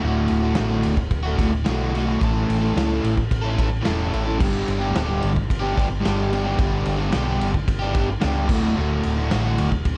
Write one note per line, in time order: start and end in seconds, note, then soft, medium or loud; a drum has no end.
0.00 0.26 D1 loud
0.00 0.52 D2 loud
0.00 0.54 A2 loud
0.00 0.44 D3 loud
0.00 0.42 A3 loud
0.05 0.39 F#4 loud
0.28 0.54 D1 loud
0.28 ride medium
0.40 0.57 A3 medium
0.40 0.56 F#4 medium
0.45 0.55 D3 medium
0.53 0.96 D2 medium
0.53 0.96 A2 medium
0.53 0.71 D3 loud
0.53 snare loud
0.53 ride loud
0.57 0.81 A1 medium
0.57 0.69 A3 loud
0.57 0.66 F#4 loud
0.68 0.95 A3 medium
0.68 0.95 F#4 medium
0.72 0.95 D3 medium
0.83 1.09 D1 loud
0.83 ride medium
0.96 muted overdriven electric guitar stroke medium
0.96 kick medium
1.11 1.35 D1 medium
1.11 kick loud
1.11 ride loud
1.23 1.38 A3 medium
1.23 1.39 F#4 medium
1.27 1.36 D3 medium
1.36 1.63 D1 loud
1.36 1.52 A2 medium
1.36 1.52 D3 medium
1.36 1.52 A3 medium
1.36 1.51 F#4 medium
1.36 kick medium
1.36 ride medium
1.52 muted overdriven electric guitar stroke medium
1.65 2.15 B1 medium
1.65 2.19 D2 medium
1.65 1.92 A2 loud
1.65 1.93 D3 loud
1.65 1.95 A3 medium
1.65 1.97 F#4 loud
1.65 snare loud
1.65 ride loud
1.93 2.19 A2 medium
1.93 2.10 D3 medium
1.93 2.07 A3 medium
1.93 ride medium
1.98 2.05 F#4 medium
2.06 2.20 A3 medium
2.06 2.19 F#4 medium
2.11 2.21 D3 medium
2.20 2.45 A1 loud
2.20 2.72 A2 loud
2.20 2.73 E3 loud
2.20 2.62 A3 loud
2.20 2.60 C#4 loud
2.20 2.60 E4 loud
2.20 2.57 A4 loud
2.20 kick loud
2.20 ride loud
2.48 2.73 A1 medium
2.48 ride medium
2.59 2.75 C#4 medium
2.59 2.76 E4 medium
2.59 2.76 A4 medium
2.63 2.74 A3 medium
2.73 3.00 C#2 loud
2.73 3.16 A2 loud
2.73 3.17 E3 loud
2.73 2.91 A3 loud
2.73 2.89 C#4 loud
2.77 2.88 E4 loud
2.77 2.87 A4 loud
2.77 snare loud
2.77 ride loud
2.88 3.14 C#4 medium
2.88 3.14 E4 medium
2.88 3.14 A4 medium
2.92 3.15 A3 medium
3.03 3.28 A1 medium
3.03 ride medium
3.15 muted overdriven electric guitar stroke soft
3.15 kick medium
3.31 3.79 A1 medium
3.31 kick loud
3.31 ride loud
3.42 3.56 C#4 medium
3.42 3.56 E4 medium
3.42 3.58 A4 medium
3.47 3.54 A3 medium
3.55 3.69 A3 medium
3.55 3.68 C#4 medium
3.55 3.68 E4 medium
3.55 kick medium
3.55 ride medium
3.59 3.68 A4 medium
3.69 muted overdriven electric guitar stroke medium
3.81 4.37 A2 medium
3.81 4.38 E3 medium
3.81 4.07 A3 loud
3.81 4.09 C#4 medium
3.81 4.11 E4 loud
3.81 ride loud
3.85 4.10 E1 medium
3.85 4.13 A4 loud
3.85 snare loud
4.08 4.27 A3 medium
4.08 4.26 C#4 medium
4.08 4.24 E4 medium
4.13 4.41 A1 medium
4.13 4.22 A4 medium
4.13 ride medium
4.24 4.39 C#4 medium
4.24 4.38 E4 medium
4.24 4.38 A4 medium
4.28 4.39 A3 medium
4.38 4.65 G1 loud
4.38 4.90 G2 loud
4.38 4.90 D3 medium
4.38 4.82 G3 loud
4.38 4.81 B3 loud
4.38 kick loud
4.38 crash loud
4.42 4.80 D4 loud
4.42 4.78 G4 loud
4.68 4.92 G1 medium
4.68 ride medium
4.79 4.92 G3 medium
4.79 4.93 B3 medium
4.79 4.95 D4 medium
4.79 4.95 G4 medium
4.91 5.34 G2 loud
4.91 5.35 D3 loud
4.91 5.08 G3 loud
4.91 5.06 B3 loud
4.95 5.20 D1 loud
4.95 5.05 D4 loud
4.95 5.02 G4 loud
4.95 snare loud
4.95 ride loud
5.03 5.32 B3 medium
5.03 5.32 D4 medium
5.03 5.31 G4 medium
5.09 5.32 G3 medium
5.22 5.47 G1 medium
5.22 ride medium
5.33 muted overdriven electric guitar stroke soft
5.33 kick medium
5.50 5.74 G1 medium
5.50 kick loud
5.50 ride loud
5.59 5.73 G3 medium
5.59 5.74 B3 medium
5.59 5.76 D4 medium
5.59 5.77 G4 medium
5.74 6.01 G1 medium
5.74 5.88 G3 medium
5.74 5.88 B3 medium
5.74 5.89 D4 medium
5.74 kick medium
5.78 5.88 G4 medium
5.78 ride medium
5.89 muted overdriven electric guitar stroke medium
6.01 6.55 G2 medium
6.01 6.56 D3 medium
6.01 6.28 G3 medium
6.01 6.30 B3 medium
6.01 6.33 D4 loud
6.05 6.53 G1 medium
6.05 6.33 G4 loud
6.05 snare loud
6.05 ride loud
6.30 6.47 G3 medium
6.30 6.45 B3 medium
6.30 ride medium
6.34 6.45 D4 medium
6.34 6.42 G4 loud
6.43 6.58 B3 medium
6.43 6.60 D4 medium
6.43 6.60 G4 medium
6.48 6.58 G3 medium
6.56 6.83 G1 loud
6.56 7.09 G2 loud
6.56 7.10 D3 medium
6.56 7.00 G3 loud
6.56 6.98 B3 loud
6.56 6.97 D4 loud
6.56 kick loud
6.56 ride loud
6.61 6.95 G4 loud
6.85 7.10 G1 loud
6.85 ride medium
6.96 7.12 B3 medium
6.96 7.13 D4 medium
6.96 7.14 G4 medium
7.01 7.12 G3 medium
7.10 7.38 B1 loud
7.10 7.53 G2 medium
7.10 7.53 D3 loud
7.10 7.28 G3 loud
7.10 7.26 B3 loud
7.10 7.25 D4 loud
7.10 snare loud
7.10 ride loud
7.15 7.23 G4 loud
7.24 7.52 B3 medium
7.24 7.51 D4 medium
7.24 7.51 G4 medium
7.29 7.52 G3 medium
7.41 7.65 G1 medium
7.41 ride medium
7.52 muted overdriven electric guitar stroke soft
7.52 kick medium
7.68 8.16 G1 loud
7.68 kick loud
7.68 ride loud
7.79 7.94 B3 medium
7.79 7.96 D4 medium
7.79 7.98 G4 medium
7.85 7.92 G3 medium
7.93 8.10 G3 medium
7.93 8.09 B3 medium
7.93 8.08 D4 medium
7.93 kick medium
7.93 ride medium
7.99 8.09 G4 medium
8.09 muted overdriven electric guitar stroke soft
8.21 8.47 C#2 loud
8.21 8.47 G2 medium
8.21 8.47 D3 loud
8.21 8.48 G3 medium
8.21 8.49 B3 medium
8.21 8.49 D4 loud
8.21 snare loud
8.21 ride loud
8.25 8.49 G4 medium
8.48 8.73 D1 medium
8.48 8.74 D2 loud
8.48 8.75 A2 loud
8.48 8.64 D3 loud
8.48 8.63 A3 loud
8.48 kick loud
8.48 crash loud
8.53 8.60 F#4 loud
8.61 8.77 A3 medium
8.61 8.78 F#4 medium
8.65 8.76 D3 medium
8.75 9.01 D1 loud
8.75 9.27 D2 loud
8.75 9.27 A2 loud
8.75 9.19 D3 loud
8.75 9.16 A3 loud
8.79 9.14 F#4 loud
9.03 9.28 D1 medium
9.03 ride medium
9.16 9.30 A3 medium
9.16 9.30 F#4 medium
9.20 9.28 D3 medium
9.28 9.71 D2 medium
9.28 9.71 A2 medium
9.28 9.44 D3 loud
9.28 9.42 A3 loud
9.28 9.41 F#4 loud
9.28 snare loud
9.28 ride loud
9.32 9.56 A1 loud
9.42 9.69 D3 medium
9.42 9.70 A3 medium
9.42 9.70 F#4 medium
9.58 9.83 D1 loud
9.58 ride medium
9.71 muted overdriven electric guitar stroke soft
9.71 kick medium
9.85 9.97 D1 medium
9.85 kick medium
9.85 ride loud